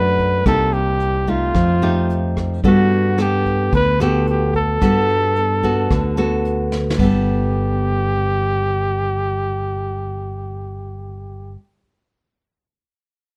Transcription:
Already playing: fingered electric bass F#2, nylon-string guitar F#2 A3 D4 F#4, flugelhorn B4
0.19 kick, closed hi-hat
0.46 fingered electric bass C2, nylon-string guitar C3 A#3 D#4 G4, flugelhorn A4, kick, cross-stick, closed hi-hat
0.73 flugelhorn G4, closed hi-hat
1.00 closed hi-hat
1.27 nylon-string guitar A3 D#4 G4, flugelhorn F4, kick, closed hi-hat
1.54 fingered electric bass F2, nylon-string guitar F3, kick, cross-stick, closed hi-hat
1.82 nylon-string guitar A3 D#4 G4, closed hi-hat
2.10 closed hi-hat
2.37 kick, cross-stick, closed hi-hat
2.64 fingered electric bass G2, nylon-string guitar G3 B3 F#4 A4, flugelhorn F#4, kick, closed hi-hat
2.91 closed hi-hat
3.18 nylon-string guitar B3 A4, flugelhorn G4, cross-stick, closed hi-hat
3.45 kick, closed hi-hat
3.73 fingered electric bass D2, nylon-string guitar D3, flugelhorn B4, kick, closed hi-hat
4.00 nylon-string guitar B3 F#4 A4, flugelhorn G4, cross-stick, closed hi-hat
4.27 flugelhorn G4, closed hi-hat
4.54 flugelhorn A4, kick, closed hi-hat
4.81 fingered electric bass G2, nylon-string guitar G3 B3 F#4 A4, kick, cross-stick, closed hi-hat
5.09 closed hi-hat
5.36 closed hi-hat
5.63 nylon-string guitar B3 F#4 A4, kick, closed hi-hat
5.90 fingered electric bass D2, nylon-string guitar D3, kick, cross-stick, closed hi-hat
6.17 nylon-string guitar B3 F#4 A4, closed hi-hat
6.45 closed hi-hat
6.72 snare
6.90 snare
6.97 fingered electric bass G1, nylon-string guitar G3 B3, flugelhorn G4, kick, crash
7.04 nylon-string guitar A4

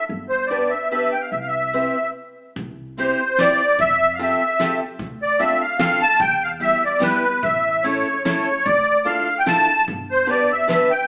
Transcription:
0.09 upright bass G1
0.29 accordion C5
0.47 steel-string acoustic guitar B3 D4 G4 B4, accordion D5
0.70 accordion E5
0.90 steel-string acoustic guitar B3 D4 G4 B4, accordion E5
1.12 accordion G5
1.21 accordion F5
1.31 upright bass C2, accordion E5
1.41 accordion F5
1.48 accordion E5
1.74 steel-string acoustic guitar C4 E4 G4 B4
2.56 upright bass C2, kick, closed hi-hat
2.97 steel-string acoustic guitar C4 E4 G4 C5, accordion C5, closed hi-hat
3.39 steel-string acoustic guitar C4 E4 G4 C5, accordion D5, snare, closed hi-hat
3.78 upright bass F2, accordion E5, kick, closed hi-hat
4.14 accordion F5
4.19 steel-string acoustic guitar C4 F4 G4 A4, accordion E5, closed hi-hat
4.60 steel-string acoustic guitar C4 F4 G4 A4, snare, closed hi-hat
4.99 upright bass D2, kick, closed hi-hat
5.22 accordion D5
5.39 steel-string acoustic guitar C4 D4 F4 A4, accordion E5, closed hi-hat
5.61 accordion F5
5.79 steel-string acoustic guitar C4 D4 F4 A4, accordion F5, snare, closed hi-hat
6.02 accordion A5
6.20 upright bass E2, accordion G5, kick, closed hi-hat
6.43 accordion F5
6.60 steel-string acoustic guitar G3 B3 E4 G4, accordion E5, closed hi-hat
6.85 accordion D5
6.99 steel-string acoustic guitar G3 B3 E4 G4, accordion B4, snare, closed hi-hat
7.43 upright bass A1, accordion E5, kick, closed hi-hat
7.84 steel-string acoustic guitar A3 C#4 E4 A4, accordion C#5, closed hi-hat
8.25 steel-string acoustic guitar A3 C#4 E4 A4, accordion C#5, snare, closed hi-hat
8.65 upright bass D2, accordion D5, kick, closed hi-hat
9.05 steel-string acoustic guitar D4 E4 F4 A4, accordion F5, closed hi-hat
9.38 accordion G5
9.46 steel-string acoustic guitar D4 E4 F4 A4, accordion A5, snare, closed hi-hat
9.88 upright bass G1, kick, closed hi-hat
10.11 accordion C5
10.27 steel-string acoustic guitar B3 D4 G4 B4, accordion D5, closed hi-hat
10.52 accordion E5
10.68 steel-string acoustic guitar B3 D4 G4 B4, accordion E5, snare, closed hi-hat
10.91 accordion G5

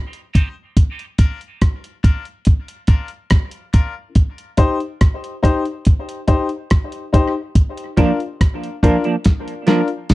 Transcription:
0.13 closed hi-hat
0.33 clean electric guitar C4 D#4 G4, upright piano D#4 G4 C5, kick, closed hi-hat
0.77 kick, closed hi-hat
0.99 closed hi-hat
1.18 upright piano D4 F4 A#4, kick, closed hi-hat
1.41 closed hi-hat
1.61 kick, cross-stick, closed hi-hat
1.84 closed hi-hat
2.03 upright piano D4 F4 A#4, kick, closed hi-hat
2.25 closed hi-hat
2.45 kick, closed hi-hat
2.68 closed hi-hat
2.87 upright piano D4 F4 A#4, kick, closed hi-hat
3.08 closed hi-hat
3.30 kick, cross-stick, closed hi-hat
3.51 closed hi-hat
3.73 upright piano D4 F4 A#4, kick, closed hi-hat
4.15 kick, closed hi-hat
4.38 closed hi-hat
4.57 upright piano D#4 G4 C5, kick, closed hi-hat
4.80 closed hi-hat
5.01 kick, cross-stick, closed hi-hat
5.24 closed hi-hat
5.43 upright piano D#4 G4 C5, kick, cross-stick, closed hi-hat
5.65 closed hi-hat
5.85 kick, closed hi-hat
6.09 closed hi-hat
6.27 upright piano D#4 G4 C5, kick, closed hi-hat
6.49 closed hi-hat
6.70 kick, cross-stick, closed hi-hat
6.92 closed hi-hat
7.13 upright piano D#4 G4 C5, kick, closed hi-hat
7.55 kick, closed hi-hat
7.77 closed hi-hat
7.97 clean electric guitar F3 A#3 D4, upright piano D4 F4 A#4, kick, closed hi-hat
8.20 closed hi-hat
8.41 kick, cross-stick, closed hi-hat
8.64 closed hi-hat
8.83 clean electric guitar F3 A#3 D4, upright piano D4 F4 A#4, kick, closed hi-hat
9.04 clean electric guitar F3 A#3 D4, closed hi-hat
9.24 kick, snare, closed hi-hat
9.48 closed hi-hat
9.67 clean electric guitar F3 A#3 D4, upright piano D4 F4 A#4, snare, closed hi-hat
9.88 closed hi-hat
10.09 kick, snare, closed hi-hat

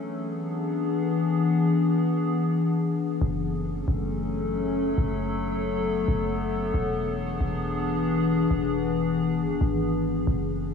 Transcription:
Already playing: ambient pad E3 B3 D4 G#4
3.21 808-style bass F#1, ambient pad F#3 A3 C#4 A4
3.88 808-style bass F#1
4.98 808-style bass F#1, ambient pad B3
6.08 808-style bass F#1
6.74 808-style bass E1, ambient pad E3 D4 G#4
7.41 808-style bass E1
8.51 808-style bass E1
9.39 808-style bass G#1
9.50 808-style bass E1
9.61 808-style bass G#1
10.27 808-style bass F#1, ambient pad F#3 A3 C#4 A4

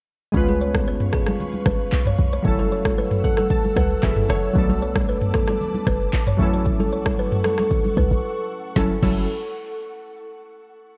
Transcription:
0.32 808-style bass C#2, synth keys G#3 B3 C#4 F4, ambient pad B4 F5 C#6, kick, low conga, shaker
0.37 synth keys B4
0.48 kalimba G#4, high conga, shaker
0.60 kalimba C#5, shaker
0.75 kick, cross-stick, high conga, shaker
0.86 kalimba B4, shaker
1.00 mid tom, shaker
1.13 kalimba G#4, kick, cross-stick
1.26 kalimba G#4, cross-stick, high conga, shaker
1.40 low conga, shaker
1.53 high conga, shaker
1.66 808-style bass G#1, kalimba B4, kick, cross-stick, high conga, shaker
1.80 shaker
1.92 808-style bass B1, clap, shaker
2.06 kalimba C#5, mid tom, shaker
2.18 808-style bass B1, low conga
2.32 kalimba C#5, shaker
2.43 808-style bass F#1, synth keys F#3 A3 C#4 E4, ambient pad A4 F#5 E6, kick, low conga, shaker
2.48 synth keys A4
2.59 kalimba A4, high conga, shaker
2.71 kalimba C#5, shaker
2.85 kick, cross-stick, high conga, shaker
2.97 kalimba B4, shaker
3.11 mid tom, shaker
3.24 kalimba A4, synth keys F#5, kick
3.37 kalimba A4, cross-stick, high conga, shaker
3.50 synth keys A5, kick, low conga, shaker
3.63 high conga, shaker
3.76 808-style bass C#2, kalimba B4, synth keys F#5, kick, cross-stick, high conga, shaker
3.90 shaker
4.02 808-style bass F#1, synth keys F#3 A3 C#4 E4 G#4 E5, kick, cross-stick, clap, shaker
4.11 synth keys A4
4.16 mid tom, shaker
4.29 808-style bass F#1, synth keys C#5, kalimba C#5, cross-stick, low conga
4.42 shaker
4.53 808-style bass B1, synth keys F#3 A3 B3 D4, ambient pad B4 A5 D6, kick, low conga, shaker
4.58 synth keys A4
4.69 kalimba A4, high conga, shaker
4.82 kalimba C#5, shaker
4.96 kick, cross-stick, high conga, shaker
5.07 kalimba B4, shaker
5.21 mid tom, shaker
5.34 kalimba A4, kick, cross-stick
5.47 kalimba A4, cross-stick, high conga, shaker
5.61 low conga, shaker
5.74 high conga, shaker
5.87 808-style bass F#1, kalimba B4, kick, cross-stick, high conga, shaker
6.01 shaker
6.13 808-style bass A1, clap, shaker
6.27 kalimba C#5, mid tom, shaker
6.37 808-style bass A1, synth keys F#3 A3 C#4 E4, ambient pad A4 F#5 C#6, low conga
6.42 synth keys A4
6.53 kalimba C#5, shaker
6.65 kick, low conga, shaker
6.80 kalimba A4, high conga, shaker
6.92 kalimba C#5, shaker
7.06 kick, cross-stick, high conga, shaker
7.18 kalimba B4, shaker
7.32 mid tom, shaker
7.44 kalimba A4, cross-stick, high conga, shaker
7.58 kalimba A4, cross-stick, high conga, shaker
7.71 kick, low conga, shaker
7.84 high conga, shaker
7.97 808-style bass C#2, kalimba B4, kick, high conga, shaker
8.11 808-style bass A1, shaker
8.76 808-style bass F#1, synth keys F#3 C#4 E4 A4, kalimba A4, kick, snare, high conga
9.03 808-style bass F#1, synth keys F#3 C#4 E4 A4, kalimba A4, kick, crash, high conga

